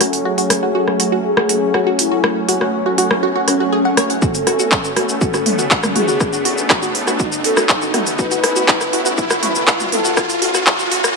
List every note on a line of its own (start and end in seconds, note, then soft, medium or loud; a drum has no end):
0.00 0.10 F#2 medium
0.00 4.18 F#3 medium
0.00 4.18 A3 medium
0.00 11.16 C#4 medium
0.00 0.16 F#4 loud
0.00 0.12 F#4 medium
0.00 cross-stick soft
0.00 open hi-hat loud
0.00 riser medium
0.13 0.22 F#1 medium
0.13 open hi-hat medium
0.25 0.33 F#4 medium
0.25 1.15 G#4 loud
0.38 0.49 F#4 medium
0.38 open hi-hat medium
0.50 0.59 F#1 medium
0.50 cross-stick medium
0.50 open hi-hat loud
0.63 0.71 F#1 medium
0.63 0.70 F#4 medium
0.75 0.86 F#4 medium
0.88 cross-stick soft
1.00 1.09 F#1 medium
1.00 1.07 F#4 medium
1.00 open hi-hat loud
1.12 1.21 F#1 medium
1.12 1.24 F#4 medium
1.25 1.89 G#4 loud
1.37 1.45 F#4 medium
1.37 cross-stick medium
1.49 1.58 F#1 medium
1.49 1.61 F#4 medium
1.49 open hi-hat loud
1.62 1.71 F#1 medium
1.74 1.82 F#4 medium
1.74 cross-stick medium
1.87 1.98 F#4 medium
1.99 2.08 F#2 loud
1.99 2.64 E4 loud
1.99 open hi-hat loud
2.12 2.20 F#1 medium
2.12 2.19 F#4 medium
2.24 2.35 F#4 medium
2.24 cross-stick medium
2.49 2.58 F#1 medium
2.49 2.56 F#4 medium
2.49 open hi-hat loud
2.61 2.70 F#1 medium
2.61 2.72 F#4 medium
2.61 cross-stick medium
2.86 2.93 F#4 medium
2.98 3.07 F#1 medium
2.98 3.10 F#4 medium
2.98 open hi-hat loud
3.11 3.19 F#1 medium
3.11 cross-stick medium
3.23 3.31 F#4 medium
3.36 3.47 F#4 medium
3.48 3.57 F#1 medium
3.48 4.12 C#4 loud
3.48 3.55 F#4 medium
3.48 cross-stick soft
3.48 open hi-hat loud
3.60 3.69 F#1 medium
3.60 3.68 F#4 medium
3.73 3.80 G#4 medium
3.85 3.90 F#5 medium
3.97 4.06 F#1 medium
3.97 4.05 C#5 loud
3.97 cross-stick medium
3.97 open hi-hat loud
4.10 4.19 F#1 medium
4.10 4.17 F#5 medium
4.10 open hi-hat medium
4.22 11.16 A3 medium
4.22 11.16 B3 medium
4.22 4.34 F#4 medium
4.22 5.11 A4 loud
4.22 kick loud
4.22 shaker medium
4.35 open hi-hat medium
4.35 shaker medium
4.47 4.56 A1 medium
4.47 4.55 F#4 medium
4.47 cross-stick medium
4.47 open hi-hat loud
4.59 4.68 A1 medium
4.59 4.71 F#4 medium
4.59 shaker soft
4.72 kick loud
4.72 clap loud
4.72 shaker medium
4.84 4.92 F#4 medium
4.84 shaker soft
4.96 5.05 A1 loud
4.96 5.08 F#4 medium
4.96 cross-stick medium
4.96 open hi-hat loud
5.09 5.18 A1 medium
5.09 shaker medium
5.21 5.29 F#4 medium
5.21 5.86 A4 medium
5.21 kick loud
5.21 shaker medium
5.34 5.45 F#4 medium
5.34 cross-stick medium
5.34 shaker medium
5.46 5.55 A1 medium
5.46 mid tom medium
5.46 open hi-hat loud
5.59 5.67 A1 medium
5.59 5.66 F#4 medium
5.59 shaker medium
5.71 5.82 F#4 medium
5.71 kick loud
5.71 clap loud
5.71 shaker medium
5.83 cross-stick medium
5.83 mid tom medium
5.83 shaker medium
5.96 6.05 A2 loud
5.96 6.03 F#4 medium
5.96 6.60 G#4 loud
5.96 mid tom medium
5.96 open hi-hat loud
6.08 6.17 A1 medium
6.08 6.19 F#4 medium
6.08 shaker medium
6.20 kick loud
6.20 cross-stick medium
6.20 shaker medium
6.33 6.40 F#4 medium
6.33 shaker medium
6.45 6.54 A1 medium
6.45 6.57 F#4 medium
6.45 open hi-hat loud
6.58 6.67 A1 medium
6.58 shaker medium
6.70 6.78 F#4 medium
6.70 kick loud
6.70 cross-stick medium
6.70 clap loud
6.70 shaker medium
6.83 6.94 F#4 medium
6.83 shaker medium
6.95 7.04 A1 loud
6.95 open hi-hat loud
7.07 7.16 A1 medium
7.07 7.15 F#4 medium
7.07 cross-stick medium
7.07 shaker medium
7.20 7.31 F#4 medium
7.20 kick loud
7.20 shaker medium
7.32 shaker medium
7.44 7.53 A1 loud
7.44 7.52 F#4 medium
7.44 8.09 A4 loud
7.44 open hi-hat loud
7.57 7.66 A1 medium
7.57 7.68 F#4 medium
7.57 cross-stick medium
7.57 shaker medium
7.69 kick loud
7.69 clap loud
7.69 shaker medium
7.82 7.89 F#4 medium
7.82 shaker medium
7.94 8.03 A2 loud
7.94 8.06 F#4 medium
7.94 cross-stick medium
7.94 mid tom medium
7.94 open hi-hat loud
8.07 8.15 A1 medium
8.07 open hi-hat medium
8.07 shaker medium
8.19 8.26 F#4 medium
8.19 9.08 B4 loud
8.19 kick loud
8.19 shaker medium
8.31 8.43 F#4 medium
8.31 open hi-hat medium
8.31 shaker medium
8.44 8.53 A1 medium
8.44 cross-stick medium
8.44 open hi-hat loud
8.56 8.65 A1 medium
8.56 8.64 F#4 medium
8.56 shaker medium
8.68 kick loud
8.68 clap loud
8.68 shaker medium
8.81 cross-stick medium
8.81 shaker medium
8.93 9.02 A1 medium
8.93 9.01 F#4 medium
8.93 open hi-hat medium
9.06 9.14 A1 medium
9.06 9.17 F#4 medium
9.06 shaker medium
9.18 9.83 B4 medium
9.18 kick loud
9.18 shaker medium
9.30 9.38 F#4 medium
9.30 cross-stick medium
9.30 shaker medium
9.43 9.52 A1 loud
9.43 9.54 F#4 medium
9.43 mid tom medium
9.43 open hi-hat loud
9.55 9.64 A1 medium
9.55 shaker medium
9.67 9.75 F#4 medium
9.67 kick loud
9.67 cross-stick medium
9.67 clap loud
9.67 shaker medium
9.80 9.91 F#4 medium
9.80 mid tom medium
9.80 shaker medium
9.92 10.01 A2 loud
9.92 10.57 A4 loud
9.92 mid tom medium
9.92 open hi-hat loud
10.05 10.14 A1 medium
10.05 10.12 F#4 medium
10.05 shaker medium
10.17 10.29 F#4 medium
10.17 kick loud
10.17 cross-stick medium
10.17 shaker medium
10.30 open hi-hat medium
10.30 shaker medium
10.42 10.51 A1 medium
10.42 10.50 F#4 medium
10.42 open hi-hat loud
10.54 10.63 A1 medium
10.54 10.66 F#4 medium
10.54 cross-stick soft
10.54 shaker medium
10.67 kick loud
10.67 clap loud
10.67 shaker medium
10.79 10.87 F#4 medium
10.79 shaker medium
10.91 11.00 A1 medium
10.91 11.03 F#4 medium
10.91 open hi-hat medium
11.04 11.13 A1 medium
11.04 cross-stick medium
11.04 shaker medium